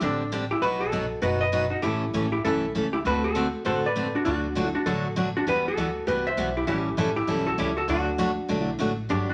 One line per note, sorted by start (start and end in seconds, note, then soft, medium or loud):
0.01 0.50 A1 medium
0.01 0.22 D3 medium
0.01 0.22 G3 medium
0.01 0.22 C4 medium
0.01 0.22 D4 medium
0.01 0.31 D4 medium
0.01 0.22 G4 medium
0.01 0.33 A4 medium
0.32 0.43 D3 medium
0.32 0.44 G3 medium
0.32 0.44 C4 medium
0.32 0.44 D4 medium
0.32 0.44 G4 medium
0.51 0.62 E4 medium
0.51 0.62 G4 medium
0.61 1.10 B1 medium
0.61 0.83 B2 medium
0.61 0.83 F#3 medium
0.61 0.83 B3 medium
0.61 0.83 D#4 medium
0.61 0.80 F#4 medium
0.61 0.83 F#4 medium
0.61 0.82 B4 loud
0.80 1.20 F#4 medium
0.80 1.20 A4 medium
0.92 1.04 B2 medium
0.92 1.04 F#3 medium
0.92 1.04 B3 medium
0.92 1.04 D#4 medium
0.92 1.04 F#4 medium
1.22 1.71 F#1 medium
1.22 1.43 B2 medium
1.22 1.43 F#3 medium
1.22 1.43 B3 medium
1.22 1.43 D#4 medium
1.22 1.40 F#4 medium
1.22 1.43 F#4 medium
1.22 1.40 B4 medium
1.41 1.70 B4 medium
1.41 1.72 D#5 loud
1.52 1.64 B2 medium
1.52 1.64 F#3 medium
1.52 1.64 B3 medium
1.52 1.64 D#4 medium
1.52 1.64 F#4 medium
1.70 1.82 D#4 medium
1.70 1.82 F#4 medium
1.82 2.07 A1 medium
1.82 2.03 C#3 medium
1.82 2.03 E3 soft
1.82 2.03 A3 medium
1.82 2.04 C#4 medium
1.82 2.29 E4 medium
1.82 2.31 G4 loud
1.82 2.04 A4 medium
2.14 2.39 A1 medium
2.14 2.25 C#3 medium
2.14 2.25 E3 medium
2.14 2.25 A3 medium
2.14 2.25 C#4 medium
2.14 2.26 A4 medium
2.32 2.43 E4 medium
2.32 2.44 G4 medium
2.45 2.70 B1 medium
2.45 2.64 C#3 medium
2.45 2.65 E3 medium
2.45 2.65 A3 medium
2.45 2.65 C#4 medium
2.45 2.73 E4 medium
2.45 2.72 A4 medium
2.45 2.65 A4 medium
2.75 3.00 C#2 medium
2.75 2.86 C#3 medium
2.75 2.86 E3 medium
2.75 2.86 A3 medium
2.75 2.86 C#4 medium
2.75 2.86 A4 medium
2.93 2.99 E4 medium
2.93 2.98 G4 medium
3.05 3.53 D2 medium
3.05 3.25 D3 medium
3.05 3.25 A3 medium
3.05 3.25 C4 medium
3.05 3.25 F#4 medium
3.05 3.23 F#4 medium
3.05 3.26 A4 medium
3.05 3.23 B4 loud
3.24 3.63 F#4 medium
3.24 3.65 A4 medium
3.35 3.46 D3 medium
3.35 3.46 A3 medium
3.35 3.46 C4 medium
3.35 3.46 F#4 medium
3.35 3.47 A4 medium
3.65 4.14 A1 medium
3.65 3.85 D3 medium
3.65 3.85 A3 medium
3.65 3.85 C4 medium
3.65 3.86 F#4 medium
3.65 3.85 A4 medium
3.65 3.83 A4 medium
3.65 3.83 C5 medium
3.86 4.13 B4 medium
3.86 4.16 D5 loud
3.96 4.06 D3 medium
3.96 4.07 A3 medium
3.96 4.07 C4 medium
3.96 4.07 F#4 medium
3.96 4.07 A4 medium
4.15 4.24 D4 medium
4.15 4.24 F#4 medium
4.25 4.74 D2 medium
4.25 4.45 D3 medium
4.25 4.45 F#3 medium
4.25 4.46 A3 medium
4.25 4.71 D4 medium
4.25 4.46 D4 medium
4.25 4.74 F#4 loud
4.25 4.46 F#4 medium
4.55 4.67 D3 medium
4.55 4.67 F#3 medium
4.55 4.67 A3 medium
4.55 4.67 D4 medium
4.55 4.67 F#4 medium
4.75 4.85 D4 medium
4.75 4.86 F#4 medium
4.86 5.34 A1 medium
4.86 5.06 D3 medium
4.86 5.06 F#3 medium
4.86 5.06 A3 medium
4.86 5.06 D4 medium
4.86 5.14 F#4 medium
4.86 5.07 F#4 medium
4.86 5.14 A4 loud
5.16 5.27 D3 medium
5.16 5.27 F#3 medium
5.16 5.28 A3 medium
5.16 5.28 D4 medium
5.16 5.28 F#4 medium
5.37 5.47 D4 medium
5.37 5.47 F#4 medium
5.46 5.70 E2 medium
5.46 5.67 E3 medium
5.46 5.67 G3 medium
5.46 5.67 B3 medium
5.46 5.67 F#4 medium
5.46 5.65 G4 medium
5.46 5.65 B4 loud
5.68 6.05 F#4 medium
5.68 6.05 A4 medium
5.77 6.02 D2 medium
5.77 5.88 E3 medium
5.77 5.88 G3 medium
5.77 5.88 B3 medium
5.77 5.89 F#4 medium
6.07 6.33 C2 medium
6.07 6.27 E3 medium
6.07 6.28 G3 medium
6.07 6.28 B3 medium
6.07 6.28 F#4 medium
6.07 6.25 G4 medium
6.07 6.26 B4 medium
6.27 6.55 C5 medium
6.27 6.54 E5 loud
6.37 6.63 B1 medium
6.37 6.48 E3 medium
6.37 6.48 G3 medium
6.37 6.49 B3 medium
6.37 6.49 F#4 medium
6.57 6.66 E4 medium
6.57 6.66 G4 medium
6.67 6.92 A1 medium
6.67 6.87 E3 medium
6.67 6.87 G3 medium
6.67 6.88 C#4 medium
6.67 7.13 E4 medium
6.67 6.88 E4 medium
6.67 7.13 G4 medium
6.67 6.88 A4 medium
6.97 7.23 A1 medium
6.97 7.08 E3 medium
6.97 7.09 G3 medium
6.97 7.09 C#4 medium
6.97 7.09 E4 medium
6.97 7.09 A4 medium
7.16 7.45 E4 medium
7.16 7.46 G4 loud
7.27 7.53 B1 medium
7.27 7.48 E3 medium
7.27 7.48 G3 medium
7.27 7.48 C#4 medium
7.27 7.48 E4 medium
7.27 7.48 A4 medium
7.46 7.57 F#4 medium
7.46 7.58 A4 medium
7.58 7.83 C#2 medium
7.58 7.69 E3 medium
7.58 7.69 G3 medium
7.58 7.70 C#4 medium
7.58 7.76 E4 medium
7.58 7.70 E4 medium
7.58 7.77 G4 medium
7.58 7.70 A4 medium
7.77 7.88 F#4 medium
7.77 7.89 A4 medium
7.88 8.36 D2 medium
7.88 8.08 D3 medium
7.88 8.09 F#3 medium
7.88 8.09 A3 medium
7.88 8.09 D4 medium
7.88 8.95 D4 medium
7.88 8.09 F#4 medium
7.88 8.63 F#4 loud
8.18 8.30 D3 medium
8.18 8.30 F#3 medium
8.18 8.30 A3 medium
8.18 8.30 D4 medium
8.18 8.30 F#4 medium
8.49 8.75 B1 medium
8.49 8.69 D3 medium
8.49 8.69 F#3 medium
8.49 8.69 A3 medium
8.49 8.70 D4 medium
8.49 8.70 F#4 medium
8.63 8.95 E4 loud
8.79 9.05 A1 medium
8.79 8.90 D3 medium
8.79 8.91 F#3 medium
8.79 8.91 A3 medium
8.79 8.91 D4 medium
8.79 8.91 F#4 medium
9.09 9.34 G1 loud
9.09 9.30 D3 medium
9.09 9.30 F#3 medium
9.09 9.30 B3 medium
9.09 9.27 D4 medium
9.09 9.30 D4 medium
9.09 9.30 G4 medium
9.09 9.28 G4 medium
9.29 9.34 D4 medium
9.29 9.34 F#4 medium